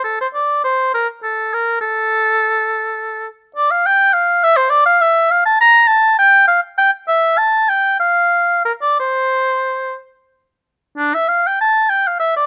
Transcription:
0, 0, Header, 1, 2, 480
1, 0, Start_track
1, 0, Tempo, 585938
1, 34, Time_signature, 6, 3, 24, 8
1, 5793, Tempo, 625000
1, 6753, Tempo, 657895
1, 8193, Tempo, 693642
1, 8673, Tempo, 618557
1, 9818, End_track
2, 0, Start_track
2, 0, Title_t, "Oboe"
2, 0, Program_c, 0, 68
2, 33, Note_on_c, 0, 69, 69
2, 152, Note_off_c, 0, 69, 0
2, 172, Note_on_c, 0, 72, 58
2, 222, Note_off_c, 0, 72, 0
2, 281, Note_on_c, 0, 74, 70
2, 518, Note_off_c, 0, 74, 0
2, 525, Note_on_c, 0, 72, 76
2, 761, Note_off_c, 0, 72, 0
2, 773, Note_on_c, 0, 70, 71
2, 879, Note_off_c, 0, 70, 0
2, 1009, Note_on_c, 0, 69, 65
2, 1260, Note_on_c, 0, 70, 72
2, 1273, Note_off_c, 0, 69, 0
2, 1477, Note_off_c, 0, 70, 0
2, 1482, Note_on_c, 0, 69, 90
2, 2675, Note_off_c, 0, 69, 0
2, 2913, Note_on_c, 0, 74, 86
2, 3036, Note_on_c, 0, 77, 84
2, 3048, Note_off_c, 0, 74, 0
2, 3166, Note_on_c, 0, 79, 96
2, 3178, Note_off_c, 0, 77, 0
2, 3389, Note_on_c, 0, 77, 91
2, 3401, Note_off_c, 0, 79, 0
2, 3634, Note_on_c, 0, 76, 106
2, 3647, Note_off_c, 0, 77, 0
2, 3741, Note_on_c, 0, 72, 87
2, 3754, Note_off_c, 0, 76, 0
2, 3848, Note_on_c, 0, 74, 94
2, 3860, Note_off_c, 0, 72, 0
2, 3974, Note_off_c, 0, 74, 0
2, 3979, Note_on_c, 0, 77, 106
2, 4105, Note_on_c, 0, 76, 92
2, 4117, Note_off_c, 0, 77, 0
2, 4345, Note_on_c, 0, 77, 104
2, 4357, Note_off_c, 0, 76, 0
2, 4462, Note_off_c, 0, 77, 0
2, 4468, Note_on_c, 0, 81, 92
2, 4581, Note_off_c, 0, 81, 0
2, 4594, Note_on_c, 0, 82, 112
2, 4813, Note_on_c, 0, 81, 97
2, 4825, Note_off_c, 0, 82, 0
2, 5058, Note_off_c, 0, 81, 0
2, 5069, Note_on_c, 0, 79, 107
2, 5299, Note_off_c, 0, 79, 0
2, 5304, Note_on_c, 0, 77, 98
2, 5414, Note_off_c, 0, 77, 0
2, 5554, Note_on_c, 0, 79, 106
2, 5664, Note_off_c, 0, 79, 0
2, 5800, Note_on_c, 0, 76, 91
2, 6029, Note_on_c, 0, 81, 100
2, 6041, Note_off_c, 0, 76, 0
2, 6267, Note_on_c, 0, 79, 91
2, 6279, Note_off_c, 0, 81, 0
2, 6501, Note_off_c, 0, 79, 0
2, 6505, Note_on_c, 0, 77, 96
2, 6978, Note_off_c, 0, 77, 0
2, 6992, Note_on_c, 0, 70, 73
2, 7045, Note_off_c, 0, 70, 0
2, 7115, Note_on_c, 0, 74, 80
2, 7231, Note_off_c, 0, 74, 0
2, 7247, Note_on_c, 0, 72, 76
2, 7944, Note_off_c, 0, 72, 0
2, 8665, Note_on_c, 0, 62, 77
2, 8793, Note_on_c, 0, 76, 78
2, 8804, Note_off_c, 0, 62, 0
2, 8899, Note_on_c, 0, 77, 87
2, 8911, Note_off_c, 0, 76, 0
2, 9047, Note_on_c, 0, 79, 76
2, 9058, Note_off_c, 0, 77, 0
2, 9150, Note_off_c, 0, 79, 0
2, 9155, Note_on_c, 0, 81, 88
2, 9376, Note_on_c, 0, 79, 87
2, 9387, Note_off_c, 0, 81, 0
2, 9515, Note_on_c, 0, 77, 69
2, 9526, Note_off_c, 0, 79, 0
2, 9606, Note_off_c, 0, 77, 0
2, 9611, Note_on_c, 0, 76, 83
2, 9736, Note_off_c, 0, 76, 0
2, 9741, Note_on_c, 0, 74, 78
2, 9818, Note_off_c, 0, 74, 0
2, 9818, End_track
0, 0, End_of_file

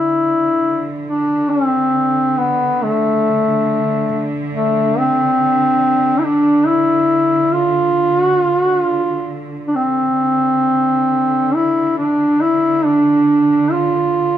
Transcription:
0, 0, Header, 1, 3, 480
1, 0, Start_track
1, 0, Tempo, 883652
1, 1285, Time_signature, 3, 2, 24, 8
1, 1762, Tempo, 857143
1, 4162, Tempo, 891530
1, 6562, Tempo, 865801
1, 7887, End_track
2, 0, Start_track
2, 0, Title_t, "Duduk"
2, 0, Program_c, 0, 69
2, 0, Note_on_c, 0, 64, 73
2, 492, Note_off_c, 0, 64, 0
2, 584, Note_on_c, 0, 62, 66
2, 816, Note_on_c, 0, 60, 78
2, 824, Note_off_c, 0, 62, 0
2, 1293, Note_on_c, 0, 59, 70
2, 1302, Note_off_c, 0, 60, 0
2, 1535, Note_on_c, 0, 57, 77
2, 1543, Note_off_c, 0, 59, 0
2, 2342, Note_off_c, 0, 57, 0
2, 2491, Note_on_c, 0, 57, 71
2, 2735, Note_on_c, 0, 60, 84
2, 2743, Note_off_c, 0, 57, 0
2, 3409, Note_on_c, 0, 64, 58
2, 3418, Note_off_c, 0, 60, 0
2, 3452, Note_on_c, 0, 62, 86
2, 3461, Note_off_c, 0, 64, 0
2, 3681, Note_on_c, 0, 64, 81
2, 3689, Note_off_c, 0, 62, 0
2, 4158, Note_on_c, 0, 65, 89
2, 4166, Note_off_c, 0, 64, 0
2, 4529, Note_off_c, 0, 65, 0
2, 4529, Note_on_c, 0, 66, 89
2, 4632, Note_off_c, 0, 66, 0
2, 4632, Note_on_c, 0, 65, 89
2, 4739, Note_off_c, 0, 65, 0
2, 4739, Note_on_c, 0, 66, 89
2, 4842, Note_off_c, 0, 66, 0
2, 4842, Note_on_c, 0, 65, 89
2, 5208, Note_off_c, 0, 65, 0
2, 5317, Note_on_c, 0, 62, 50
2, 5359, Note_on_c, 0, 60, 83
2, 5367, Note_off_c, 0, 62, 0
2, 6327, Note_on_c, 0, 64, 67
2, 6335, Note_off_c, 0, 60, 0
2, 6555, Note_off_c, 0, 64, 0
2, 6558, Note_on_c, 0, 62, 73
2, 6799, Note_on_c, 0, 64, 85
2, 6807, Note_off_c, 0, 62, 0
2, 7043, Note_on_c, 0, 62, 80
2, 7051, Note_off_c, 0, 64, 0
2, 7520, Note_on_c, 0, 65, 74
2, 7529, Note_off_c, 0, 62, 0
2, 7887, Note_off_c, 0, 65, 0
2, 7887, End_track
3, 0, Start_track
3, 0, Title_t, "String section"
3, 0, Program_c, 1, 48
3, 0, Note_on_c, 1, 50, 47
3, 5591, Note_off_c, 1, 50, 0
3, 5598, Note_on_c, 1, 50, 41
3, 7887, Note_off_c, 1, 50, 0
3, 7887, End_track
0, 0, End_of_file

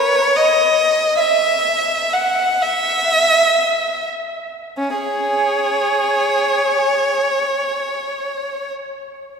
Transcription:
0, 0, Header, 1, 2, 480
1, 0, Start_track
1, 0, Key_signature, 4, "minor"
1, 0, Tempo, 823045
1, 695, Time_signature, 6, 3, 24, 8
1, 695, Tempo, 943396
1, 1175, Tempo, 1119403
1, 1655, Tempo, 1534527
1, 2135, Tempo, 1065719
1, 3095, Tempo, 1041667
1, 4237, End_track
2, 0, Start_track
2, 0, Title_t, "Violin"
2, 0, Program_c, 0, 40
2, 0, Note_on_c, 0, 73, 61
2, 207, Note_off_c, 0, 73, 0
2, 213, Note_on_c, 0, 75, 60
2, 695, Note_on_c, 0, 76, 56
2, 699, Note_off_c, 0, 75, 0
2, 1165, Note_off_c, 0, 76, 0
2, 1174, Note_on_c, 0, 78, 46
2, 1383, Note_on_c, 0, 76, 54
2, 1393, Note_off_c, 0, 78, 0
2, 1908, Note_off_c, 0, 76, 0
2, 2132, Note_on_c, 0, 61, 37
2, 2225, Note_on_c, 0, 73, 37
2, 2229, Note_on_c, 0, 68, 32
2, 2235, Note_off_c, 0, 61, 0
2, 3175, Note_off_c, 0, 68, 0
2, 3919, Note_off_c, 0, 73, 0
2, 4237, End_track
0, 0, End_of_file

